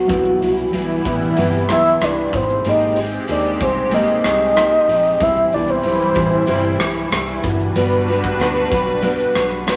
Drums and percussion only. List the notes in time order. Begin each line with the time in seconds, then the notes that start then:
0.09 kick, closed hi-hat, shaker
0.25 shaker
0.42 closed hi-hat, shaker
0.57 shaker
0.73 closed hi-hat, shaker
0.90 shaker
1.05 kick, closed hi-hat, shaker
1.22 shaker
1.36 closed hi-hat, shaker
1.52 shaker
1.69 cross-stick, closed hi-hat, shaker
1.85 shaker
2.01 cross-stick, closed hi-hat, shaker
2.17 shaker
2.33 kick, closed hi-hat, shaker
2.49 shaker
2.65 closed hi-hat, shaker
2.80 shaker
2.96 closed hi-hat, shaker
3.12 shaker
3.28 closed hi-hat, shaker
3.45 shaker
3.60 kick, closed hi-hat, shaker
3.77 shaker
3.91 closed hi-hat, shaker
4.08 shaker
4.24 cross-stick, closed hi-hat, shaker
4.40 shaker
4.56 cross-stick, closed hi-hat, shaker
4.73 shaker
4.89 closed hi-hat, shaker
5.06 shaker
5.20 kick, closed hi-hat, shaker
5.36 shaker
5.52 closed hi-hat, shaker
5.68 shaker
5.83 closed hi-hat, shaker
6.00 shaker
6.15 kick, closed hi-hat, shaker
6.32 shaker
6.47 closed hi-hat, shaker
6.63 shaker
6.80 cross-stick, closed hi-hat, shaker
6.96 shaker
7.12 cross-stick, closed hi-hat, shaker
7.28 shaker
7.43 kick, closed hi-hat, shaker
7.60 shaker
7.76 closed hi-hat, shaker
7.91 shaker
8.08 closed hi-hat, shaker
8.24 kick, shaker
8.40 cross-stick, closed hi-hat, shaker
8.57 shaker
8.71 kick, closed hi-hat, shaker
8.88 shaker
9.02 closed hi-hat, shaker
9.19 shaker
9.35 cross-stick, closed hi-hat, shaker
9.51 shaker
9.67 cross-stick, closed hi-hat, shaker